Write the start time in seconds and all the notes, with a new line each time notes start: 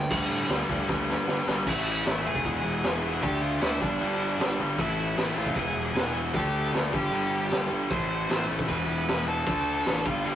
Already playing: G5
0.10 D2 G2 D3 G3, kick, crash
0.30 A2, crash
0.49 D2 G2 D3 G3, snare, crash
0.69 D2 G2 D3 G3, kick, crash
0.88 D2 G2 D3 G3, kick, snare
1.09 snare
1.28 G2 D3 G3, snare
1.47 G1 G2 D3 G3, snare
1.66 A1 A2 E3 A3 E4 E5, kick, crash
2.06 A1 A2 E3 A3, snare, crash
2.25 F1 A2 E3 A3 G#4 G#5
2.35 kick
2.44 E1 E2 B2 E3, kick, crash
2.64 E1
2.83 E1 E2 B2 E3, snare, crash
3.03 E2 B2 E3
3.22 D2 D3 A3 D4 G4 G5, kick, crash
3.42 F4 F5
3.61 D2 D3 A3 D4 E4 E5, snare, crash
3.81 G1 G2 D3 G3 D4 D5, kick
4.01 G1 G2 D3 G3, crash
4.39 G1 G2 D3 G3, snare, crash
4.60 G1 G2 D3 G3
4.78 A1 A2 E3 A3 E4 E5, kick, crash
5.16 A1 A2 E3 A3, snare, crash
5.35 A1 A2 E3 A3 F4 F5
5.47 kick
5.56 E1 E2 B2 E3 G#4 G#5, kick, crash
5.74 E1
5.93 E1 E2 B2 E3, snare, crash
6.15 E2 B2 E3
6.34 D2 D3 A3 D4 G4 G5, kick, crash
6.72 D2 D3 A3 D4, snare, crash
6.93 G1 G2 D3 G3 G4 G5, kick
7.12 G1 G2 D3 G3, crash
7.51 G1 G2 D3 G3, snare, crash
7.71 G1 G2 D3 G3
7.90 A1 A2 E3 A3 C5 C6, kick, crash
8.29 A1 A2 E3 A3, snare, crash
8.49 A1 A2 E3 A3
8.59 kick
8.67 E1 E2 B2 E3 B4 B5, kick, crash
8.88 E1
9.08 E1 E2 B2 E3, snare, crash
9.27 E2 B2 E3 A4 A5
9.46 D2 D3 A3 D4, kick, crash
9.86 A1 D3 A3 D4, snare, crash
10.05 G1 G2 D3 G3 F4 F5, kick
10.24 G1 G2 D3 G3 G4 G5, crash